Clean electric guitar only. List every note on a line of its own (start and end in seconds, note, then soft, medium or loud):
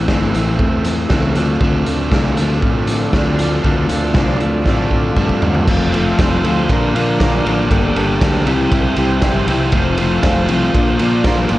0.00 0.10 A3 medium
0.00 0.11 C4 medium
0.00 0.10 E4 medium
0.09 0.60 A2 medium
0.09 0.58 E3 medium
0.09 0.36 A3 loud
0.09 0.35 C4 loud
0.09 0.33 E4 loud
0.34 0.60 A3 medium
0.34 0.61 C4 medium
0.34 0.61 E4 medium
0.59 0.86 E3 medium
0.59 0.86 A3 medium
0.59 0.85 C4 medium
0.59 0.84 E4 medium
0.85 1.36 A2 medium
0.85 1.09 E3 medium
0.85 1.10 A3 medium
0.85 1.11 C4 medium
0.85 1.11 E4 medium
1.10 1.34 E3 medium
1.10 1.38 A3 medium
1.10 1.36 C4 medium
1.10 1.35 E4 medium
1.36 1.60 D3 medium
1.36 1.61 A3 medium
1.36 1.62 C4 medium
1.36 1.63 F4 medium
1.61 2.13 D3 medium
1.61 1.88 A3 loud
1.61 1.87 C4 loud
1.61 1.86 F4 loud
1.86 2.13 A3 medium
1.86 2.14 C4 medium
1.86 2.15 F4 medium
2.13 2.63 D3 medium
2.13 2.40 A3 medium
2.13 2.38 C4 loud
2.13 2.37 F4 loud
2.37 2.64 A3 medium
2.37 2.65 C4 medium
2.37 2.66 F4 medium
2.64 2.91 D3 medium
2.64 2.91 A3 medium
2.64 2.90 C4 medium
2.64 2.88 F4 medium
2.89 3.13 D3 medium
2.89 3.15 A3 medium
2.89 3.16 C4 medium
2.89 3.17 F4 medium
3.14 3.63 D3 medium
3.14 3.41 A3 medium
3.14 3.40 C4 loud
3.14 3.39 F4 medium
3.39 3.64 A3 medium
3.39 3.65 C4 medium
3.39 3.65 F4 medium
3.64 4.13 D3 loud
3.64 3.91 A3 medium
3.64 3.90 C4 loud
3.64 3.88 F4 loud
3.89 4.14 A3 medium
3.89 4.15 C4 medium
3.89 4.16 F4 medium
4.15 4.64 D3 loud
4.15 4.43 A3 medium
4.15 4.42 C4 loud
4.15 4.40 F4 loud
4.41 4.66 A3 medium
4.41 4.67 C4 medium
4.41 4.67 F4 medium
4.66 4.94 D3 medium
4.66 4.93 A3 medium
4.66 4.92 C4 medium
4.66 4.91 F4 medium
4.93 5.17 D3 medium
4.93 5.18 A3 medium
4.93 5.19 C4 medium
4.93 5.20 F4 medium
5.18 5.67 D3 medium
5.18 5.45 A3 medium
5.18 5.44 C4 medium
5.18 5.43 F4 medium
5.44 5.68 A3 medium
5.44 5.67 C4 medium
5.44 5.67 F4 medium
5.70 5.94 F3 loud
5.70 5.95 A3 loud
5.70 5.95 C4 loud
5.70 5.96 F4 loud
5.95 6.19 F3 medium
5.95 6.19 A3 medium
5.95 6.20 C4 medium
5.95 6.20 F4 medium
6.20 6.44 F3 medium
6.20 6.44 A3 medium
6.20 6.45 C4 medium
6.20 6.45 F4 medium
6.45 6.68 F3 loud
6.45 6.68 A3 loud
6.45 6.69 C4 loud
6.45 6.69 F4 loud
6.70 6.93 A#2 loud
6.70 6.94 D3 loud
6.70 6.95 F3 medium
6.70 6.95 A#3 loud
6.70 6.95 D4 loud
6.70 6.96 A#4 loud
6.94 7.20 A#2 medium
6.94 7.20 D3 medium
6.94 7.21 F3 loud
6.94 7.21 A#3 loud
6.94 7.21 D4 medium
6.94 7.22 A#4 medium
7.21 7.45 A#2 medium
7.21 7.45 D3 loud
7.21 7.46 F3 medium
7.21 7.46 A#3 loud
7.21 7.47 D4 loud
7.21 7.47 A#4 loud
7.46 7.69 A#2 medium
7.46 7.69 D3 medium
7.46 7.70 F3 medium
7.46 7.70 A#3 medium
7.46 7.70 D4 loud
7.46 7.70 A#4 medium
7.70 7.94 G2 loud
7.70 7.94 D3 loud
7.70 7.95 G3 loud
7.70 7.96 A#3 loud
7.70 7.96 D4 loud
7.70 7.96 A4 loud
7.96 8.19 G2 loud
7.96 8.20 D3 loud
7.96 8.21 G3 medium
7.96 8.21 A#3 medium
7.96 8.21 D4 loud
7.96 8.22 A4 loud
8.21 8.45 G2 medium
8.21 8.45 D3 medium
8.21 8.45 G3 medium
8.21 8.45 A#3 medium
8.21 8.46 D4 loud
8.21 8.46 A4 medium
8.46 8.71 C3 loud
8.46 8.71 G3 loud
8.46 8.72 C4 loud
8.46 8.72 E4 loud
8.46 8.73 G4 loud
8.72 8.96 C3 medium
8.72 8.96 G3 loud
8.72 8.97 C4 medium
8.72 8.98 E4 loud
8.72 8.98 G4 loud
8.97 9.22 C3 medium
8.97 9.23 G3 medium
8.97 9.23 C4 medium
8.97 9.23 E4 medium
8.97 9.24 G4 loud
9.23 9.48 C3 loud
9.23 9.48 G3 loud
9.23 9.49 C4 medium
9.23 9.50 E4 loud
9.23 9.50 G4 medium
9.49 9.72 C3 medium
9.49 9.72 G3 medium
9.49 9.73 C4 medium
9.49 9.73 E4 medium
9.49 9.73 G4 medium
9.73 9.97 F2 loud
9.73 9.98 C3 medium
9.73 9.99 F3 loud
9.73 9.99 A3 loud
9.73 9.99 C4 loud
9.73 10.00 F4 loud
9.98 10.23 F2 medium
9.98 10.23 C3 loud
9.98 10.24 F3 loud
9.98 10.24 A3 loud
9.98 10.25 C4 loud
9.98 10.25 F4 loud
10.24 10.48 F2 medium
10.24 10.49 C3 medium
10.24 10.49 F3 medium
10.24 10.50 A3 medium
10.24 10.50 C4 loud
10.24 10.51 F4 medium
10.49 10.73 F2 loud
10.49 10.73 C3 loud
10.49 10.73 F3 loud
10.49 10.74 A3 loud
10.49 10.74 C4 loud
10.49 10.74 F4 loud
10.75 11.00 A#2 loud
10.75 11.00 F3 medium
10.75 11.01 A#3 loud
10.75 11.01 D4 loud
10.75 11.01 F4 loud
11.01 11.25 A#2 medium
11.01 11.25 F3 loud
11.01 11.26 A#3 medium
11.01 11.26 D4 medium
11.01 11.27 F4 loud
11.26 11.50 A#2 medium
11.26 11.51 F3 medium
11.26 11.51 A#3 loud
11.26 11.52 D4 loud
11.26 11.52 F4 loud
11.52 11.59 A#2 medium
11.52 11.59 F3 medium
11.52 11.59 A#3 medium
11.52 11.59 D4 medium
11.52 11.59 F4 medium